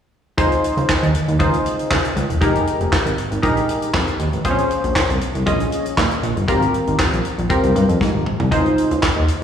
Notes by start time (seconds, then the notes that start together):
0.38 C#2 D#4 F4 G#4 C5, kick, closed hi-hat
0.52 closed hi-hat
0.64 closed hi-hat
0.77 C#2, closed hi-hat
0.89 kick, snare, clap
1.03 D#2, closed hi-hat
1.15 closed hi-hat
1.28 D#2, closed hi-hat
1.39 C#2 D#4 F4 G#4 C5, kick, closed hi-hat
1.53 closed hi-hat
1.66 closed hi-hat
1.79 closed hi-hat
1.91 C#3, kick, snare, clap
2.05 closed hi-hat
2.16 C#2, closed hi-hat
2.30 E1, closed hi-hat
2.41 F1 D#4 G4 G#4 A#4, kick, closed hi-hat
2.55 closed hi-hat
2.67 closed hi-hat
2.80 F1, closed hi-hat
2.93 kick, snare, clap
3.06 G#1, closed hi-hat
3.18 closed hi-hat
3.31 G#1, closed hi-hat
3.42 A#1 D#4 G4 G#4 A#4, kick, closed hi-hat
3.57 closed hi-hat
3.69 closed hi-hat
3.82 closed hi-hat
3.94 F2, kick, snare, clap
4.07 closed hi-hat
4.19 D#2, closed hi-hat
4.33 A1, closed hi-hat
4.45 A#1 C4 F4 G#4 C5, kick, closed hi-hat
4.51 C#4
4.58 closed hi-hat
4.71 closed hi-hat
4.84 A#1, closed hi-hat
4.96 kick, snare, clap
5.09 C2, closed hi-hat
5.21 closed hi-hat
5.35 C2, closed hi-hat
5.46 A#1 C#4 F4 G#4 D#5, kick, closed hi-hat
5.60 closed hi-hat
5.72 closed hi-hat
5.86 closed hi-hat
5.98 A#2, kick, snare, clap
6.11 closed hi-hat
6.23 A#1, closed hi-hat
6.37 G1, closed hi-hat
6.48 G#1 C4 F4 G4 A#4, kick, closed hi-hat
6.62 closed hi-hat
6.74 closed hi-hat
6.87 G#1, closed hi-hat
6.99 kick, snare, clap
7.13 A#1, closed hi-hat
7.25 closed hi-hat
7.38 A#1, closed hi-hat
7.49 C4 F4 G4 A#4, kick, closed hi-hat
7.63 C2, closed hi-hat
7.76 G2, closed hi-hat
7.89 F2, closed hi-hat
8.01 G#2, kick, snare
8.14 G#1
8.26 mid tom
8.40 C2, floor tom
8.51 C#2 D#4 F4 G#4 C5, kick, closed hi-hat
8.66 closed hi-hat
8.78 closed hi-hat
8.91 C#2, closed hi-hat
9.03 kick, snare, clap
9.16 D#2
9.28 closed hi-hat